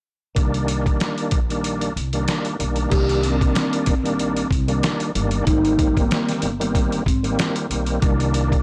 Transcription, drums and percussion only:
0.36 kick, closed hi-hat
0.54 closed hi-hat
0.68 closed hi-hat
0.86 kick, closed hi-hat
1.00 snare, closed hi-hat
1.18 closed hi-hat
1.31 kick, closed hi-hat
1.50 closed hi-hat
1.64 closed hi-hat
1.81 closed hi-hat
1.97 closed hi-hat
2.13 closed hi-hat
2.28 snare, closed hi-hat
2.45 closed hi-hat
2.60 closed hi-hat
2.76 closed hi-hat
2.91 kick, closed hi-hat, crash
3.09 closed hi-hat
3.23 closed hi-hat
3.41 kick, closed hi-hat
3.55 snare, closed hi-hat
3.73 closed hi-hat
3.86 kick, closed hi-hat
4.05 closed hi-hat
4.19 closed hi-hat
4.37 closed hi-hat
4.51 kick, closed hi-hat
4.68 closed hi-hat
4.83 snare, closed hi-hat
5.00 closed hi-hat
5.15 closed hi-hat
5.31 closed hi-hat
5.47 kick, closed hi-hat
5.65 closed hi-hat
5.79 kick, closed hi-hat
5.97 kick, closed hi-hat
6.11 snare, closed hi-hat
6.29 snare, closed hi-hat
6.42 closed hi-hat
6.61 closed hi-hat
6.75 kick, closed hi-hat
6.92 closed hi-hat
7.06 kick, closed hi-hat
7.24 closed hi-hat
7.39 snare, closed hi-hat
7.56 closed hi-hat
7.71 closed hi-hat
7.86 closed hi-hat
8.02 kick, closed hi-hat
8.20 closed hi-hat
8.34 closed hi-hat
8.52 kick, closed hi-hat

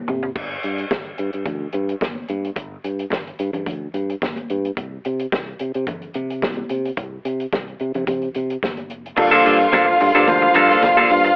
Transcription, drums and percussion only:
0.08 mid tom
0.23 floor tom
0.35 kick, crash, muted conga
0.63 closed hi-hat
0.78 closed hi-hat
0.91 kick, snare, high conga
1.18 closed hi-hat
1.33 closed hi-hat
1.46 kick, closed hi-hat, muted conga, low conga
1.72 closed hi-hat, muted conga
1.89 closed hi-hat
2.01 kick, snare, high conga
2.15 high conga
2.28 closed hi-hat
2.45 closed hi-hat
2.56 kick, closed hi-hat, muted conga
2.84 closed hi-hat
2.99 closed hi-hat
3.10 kick, snare, high conga
3.27 closed hi-hat
3.39 closed hi-hat
3.53 closed hi-hat, low conga
3.66 kick, closed hi-hat, muted conga, low conga
3.94 closed hi-hat, muted conga
4.10 closed hi-hat
4.22 kick, snare, high conga
4.36 closed hi-hat, high conga
4.50 closed hi-hat
4.65 closed hi-hat
4.77 kick, closed hi-hat, muted conga
5.05 closed hi-hat
5.19 closed hi-hat
5.32 kick, snare, high conga
5.59 closed hi-hat
5.74 closed hi-hat
5.87 kick, closed hi-hat, muted conga, low conga
6.02 closed hi-hat
6.14 closed hi-hat, muted conga
6.30 closed hi-hat
6.42 kick, snare, high conga
6.57 high conga
6.69 closed hi-hat
6.85 closed hi-hat
6.97 kick, closed hi-hat, muted conga
7.25 closed hi-hat
7.40 closed hi-hat
7.53 kick, snare, high conga
7.68 closed hi-hat
7.79 closed hi-hat
7.94 closed hi-hat, low conga
8.07 kick, closed hi-hat, muted conga, low conga
8.22 closed hi-hat
8.34 closed hi-hat, muted conga
8.50 closed hi-hat
8.63 kick, snare, high conga
8.77 closed hi-hat, high conga
8.90 closed hi-hat
9.06 closed hi-hat
9.17 kick, crash, muted conga
9.45 closed hi-hat
9.60 closed hi-hat
9.73 kick, snare, closed hi-hat, high conga
10.00 open hi-hat
10.15 closed hi-hat
10.28 kick, closed hi-hat, muted conga, low conga
10.54 closed hi-hat, muted conga
10.71 closed hi-hat
10.82 kick, snare, closed hi-hat, high conga
10.97 closed hi-hat, high conga
11.10 open hi-hat
11.25 closed hi-hat

